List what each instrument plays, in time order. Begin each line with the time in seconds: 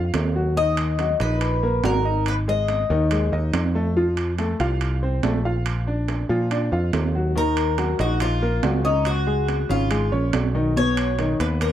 Already playing: picked electric bass F2, grand piano F4 F5
0.14 picked electric bass D#2, high timbale, low timbale
0.35 grand piano F#3 F#4
0.57 grand piano D#3 D#4, cuban tres D#5
0.77 high timbale
0.99 grand piano F#3 F#4, high timbale, low timbale
1.20 picked electric bass A#1, grand piano D#4 D#5, cuban tres B4, high timbale
1.41 high timbale
1.63 grand piano A#3 A#4
1.84 picked electric bass G#1, grand piano F#3 F#4, cuban tres A#4, high timbale, low timbale
2.05 grand piano D#4 D#5
2.26 cuban tres B4, high timbale
2.48 grand piano G#3 G#4, cuban tres D#5
2.68 high timbale, low timbale
2.90 picked electric bass D#2, grand piano D#3 D#4
3.11 grand piano G#3 G#4, high timbale
3.32 picked electric bass D#2, grand piano D#4 D#5
3.54 picked electric bass F2, high timbale, low timbale
3.75 grand piano A3 A4
3.96 grand piano F3 F4
4.17 high timbale
4.38 grand piano A3 A4, high timbale, low timbale
4.60 picked electric bass C2, grand piano F4 F5, high timbale
4.81 high timbale
5.03 grand piano C4 C5
5.23 picked electric bass A#1, grand piano A3 A4, high timbale, low timbale
5.45 grand piano F4 F5
5.66 high timbale
5.87 grand piano D4 D5
6.08 high timbale, low timbale
6.29 picked electric bass A#2, grand piano F3 F4
6.51 grand piano D4 D5, high timbale
6.72 picked electric bass F2, grand piano F4 F5
6.93 picked electric bass D#2, high timbale, low timbale
7.15 grand piano F#3 F#4
7.35 grand piano D#3 D#4, cuban tres A#4
7.57 high timbale
7.78 grand piano F#3 F#4, high timbale, low timbale
7.99 picked electric bass A#1, grand piano D#4 D#5, cuban tres F#4, high timbale
8.20 cuban tres F4, high timbale
8.42 grand piano A#3 A#4
8.63 picked electric bass C#2, grand piano F#3 F#4, high timbale, low timbale
8.84 grand piano C#4 C#5, cuban tres D#4
9.05 cuban tres F#4, high timbale
9.27 grand piano G#3 G#4
9.48 high timbale, low timbale
9.69 picked electric bass G#1, grand piano C#3 C#4, cuban tres F4
9.91 grand piano G#3 G#4, high timbale
10.12 picked electric bass A#1, grand piano C#4 C#5
10.33 picked electric bass B1, high timbale, low timbale
10.55 grand piano D#3 D#4
10.76 grand piano B2 B3, cuban tres C#5
10.97 high timbale
11.19 grand piano D#3 D#4, high timbale, low timbale
11.40 picked electric bass D#2, grand piano B3 B4, cuban tres B4, high timbale
11.61 cuban tres A#4, high timbale